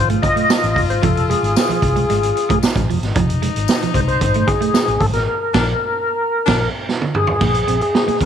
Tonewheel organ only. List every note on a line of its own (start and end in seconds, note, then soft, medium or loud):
0.22 0.85 D#5 loud
0.90 1.02 C5 medium
1.02 1.30 A4 medium
1.29 1.56 G#4 medium
1.57 2.59 G#4 medium
3.94 4.01 C5 loud
4.08 4.49 C5 loud
4.47 5.03 G#4 loud
5.00 5.06 A4 medium
5.13 6.70 A#4 loud
7.16 7.81 G#4 loud
7.82 8.23 G#4 loud